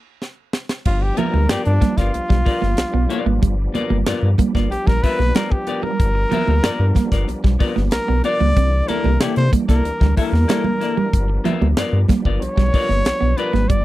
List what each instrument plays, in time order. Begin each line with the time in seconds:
0.22 snare
0.53 snare
0.69 snare
0.85 analog synth bass G1, tonewheel organ F3 G3 B3 D4, trumpet F4, kick, crash, muted conga
1.02 trumpet G4, muted clean electric guitar stroke
1.17 clean electric guitar F3 B3 F4 A#4 E5, trumpet A#4, closed hi-hat, muted conga, high conga
1.34 analog synth bass D2, clean electric guitar G3, high conga
1.49 analog synth bass G2, clean electric guitar B3 F4 A#4 D5, trumpet G4, snare, closed hi-hat
1.65 analog synth bass G2, trumpet D4, closed hi-hat
1.81 clean electric guitar A#3, muted clean electric guitar stroke, kick, snare, closed hi-hat, muted conga, low conga
1.97 analog synth bass G1, clean electric guitar B3 F4 A#4 D5, trumpet F4, kick, snare, closed hi-hat
2.14 analog synth bass B1, muted clean electric guitar stroke, closed hi-hat, muted conga
2.29 analog synth bass B1, clean electric guitar G3, muted clean electric guitar stroke, kick, snare
2.45 clean electric guitar B3 F4 A#4 D5, muted clean electric guitar stroke, kick, open hi-hat, muted conga
2.62 analog synth bass G1, clean electric guitar A#3, muted clean electric guitar stroke, snare, high conga
2.77 analog synth bass B1, snare, closed hi-hat
2.93 analog synth bass B1, clean electric guitar B3, muted clean electric guitar stroke
3.10 clean electric guitar B3 F4 A#4 D5, muted clean electric guitar stroke, closed hi-hat, muted conga
3.26 analog synth bass G#1, clean electric guitar A#3, muted clean electric guitar stroke, low conga
3.42 analog synth bass G1, clean electric guitar G3, kick, closed hi-hat, muted conga
3.74 clean electric guitar B3 F4 A#4 D5, muted clean electric guitar stroke, closed hi-hat, high conga
3.90 analog synth bass G1, clean electric guitar G3, high conga
4.06 analog synth bass G2, clean electric guitar B3 F4 A#4 D5, muted clean electric guitar stroke, snare, closed hi-hat, muted conga
4.23 analog synth bass G2
4.38 clean electric guitar A#3, muted clean electric guitar stroke, kick, closed hi-hat, muted conga, low conga
4.55 analog synth bass G1, clean electric guitar A#3 B3 F4 A#4 D5, kick, snare
4.71 analog synth bass A#1, trumpet G4, muted clean electric guitar stroke, closed hi-hat, muted conga
4.87 analog synth bass A#1, clean electric guitar G3, trumpet A#4, muted clean electric guitar stroke, kick, snare
5.03 clean electric guitar B3 F4 A#4 E5, trumpet B4, muted clean electric guitar stroke, kick, open hi-hat, muted conga
5.19 analog synth bass B1, clean electric guitar A#3, muted clean electric guitar stroke, snare, high conga
5.35 clean electric guitar G3 B3 F4 A#4 D5, trumpet A#4, snare, closed hi-hat, muted conga
5.52 trumpet G4, muted clean electric guitar stroke, kick
5.67 clean electric guitar B3 F4 A#4 D5, closed hi-hat, muted conga
5.83 clean electric guitar G3, trumpet A#4, muted clean electric guitar stroke, low conga
6.00 analog synth bass G1, kick, closed hi-hat
6.15 muted clean electric guitar stroke
6.31 clean electric guitar F3 B3 F4 A#4 E5, closed hi-hat, muted conga, high conga
6.47 analog synth bass D2, clean electric guitar G3, high conga
6.63 analog synth bass G2, clean electric guitar B3 F4 A#4 D5, snare, closed hi-hat
6.79 analog synth bass G2
6.95 clean electric guitar A#3, muted clean electric guitar stroke, kick, snare, closed hi-hat, muted conga, low conga
7.12 analog synth bass G1, clean electric guitar B3 F4 A#4 D5, kick, snare, closed hi-hat
7.28 analog synth bass B1, muted clean electric guitar stroke, closed hi-hat, muted conga
7.44 analog synth bass B1, clean electric guitar G3, muted clean electric guitar stroke, kick, snare
7.59 clean electric guitar B3 F4 A#4 D5, muted clean electric guitar stroke, kick, open hi-hat, muted conga
7.76 analog synth bass G1, clean electric guitar A#3, muted clean electric guitar stroke, snare, high conga
7.91 analog synth bass B1, trumpet A#4, snare, closed hi-hat
8.08 analog synth bass B1, clean electric guitar B3, muted clean electric guitar stroke
8.24 clean electric guitar B3 F4 A#4 D5, trumpet D5, muted clean electric guitar stroke, closed hi-hat, muted conga
8.40 analog synth bass C#2, clean electric guitar A#3, muted clean electric guitar stroke, low conga
8.57 analog synth bass C2, tonewheel organ E3 A#3, clean electric guitar C4, kick, closed hi-hat, muted conga
8.88 clean electric guitar A#3 E4 A4 D5, trumpet A#4, muted clean electric guitar stroke, closed hi-hat, muted conga, high conga
9.04 analog synth bass C2, clean electric guitar G3, high conga
9.20 analog synth bass C3, clean electric guitar A#3 E4 A4 D5, trumpet G4, muted clean electric guitar stroke, snare, closed hi-hat
9.36 analog synth bass C3, trumpet C5, closed hi-hat
9.52 clean electric guitar A#3, muted clean electric guitar stroke, kick, closed hi-hat, low conga
9.68 analog synth bass C2, clean electric guitar A#3 E4 A4 D5, trumpet A#4, kick, snare, closed hi-hat
9.84 analog synth bass D2, muted clean electric guitar stroke, closed hi-hat, muted conga
10.00 analog synth bass D2, clean electric guitar G3, muted clean electric guitar stroke, kick, snare
10.17 clean electric guitar A#3 E4 A4 E5, trumpet A#4, muted clean electric guitar stroke, kick, open hi-hat, muted conga
10.32 analog synth bass E2, clean electric guitar A#3, muted clean electric guitar stroke, snare, high conga
10.48 clean electric guitar G3 A#3 E4 A4 D5, snare, closed hi-hat
10.64 muted clean electric guitar stroke, high conga, low conga
10.81 clean electric guitar A#3 E4 A4 D5, snare, closed hi-hat
10.97 clean electric guitar G3, muted clean electric guitar stroke, low conga
11.13 analog synth bass G1, tonewheel organ F3 B3, kick, closed hi-hat, muted conga
11.30 muted clean electric guitar stroke
11.44 clean electric guitar F3 B3 F4 A#4 E5, closed hi-hat, high conga
11.62 analog synth bass D2, clean electric guitar G3, high conga
11.77 analog synth bass G2, clean electric guitar B3 F4 A#4 D5, snare, closed hi-hat, muted conga
11.93 analog synth bass G2
12.08 clean electric guitar A#3, muted clean electric guitar stroke, kick, snare, closed hi-hat, muted conga, low conga
12.25 analog synth bass G1, clean electric guitar B3 F4 A#4 D5, kick
12.41 analog synth bass B1, trumpet C#5, muted clean electric guitar stroke, closed hi-hat
12.57 analog synth bass B1, clean electric guitar G3, muted clean electric guitar stroke, kick, snare
12.73 clean electric guitar B3 F4 A#4 D5, muted clean electric guitar stroke, kick, open hi-hat
12.89 analog synth bass G1, clean electric guitar A#3, muted clean electric guitar stroke, snare, high conga
13.05 analog synth bass B1, snare, closed hi-hat, muted conga
13.21 analog synth bass B1, clean electric guitar B3, muted clean electric guitar stroke
13.37 clean electric guitar B3 F4 A#4 D5, trumpet B4, muted clean electric guitar stroke, closed hi-hat
13.53 analog synth bass G#1, clean electric guitar A#3, muted clean electric guitar stroke, snare, low conga
13.69 analog synth bass G1, clean electric guitar G3, trumpet D5, kick, closed hi-hat, muted conga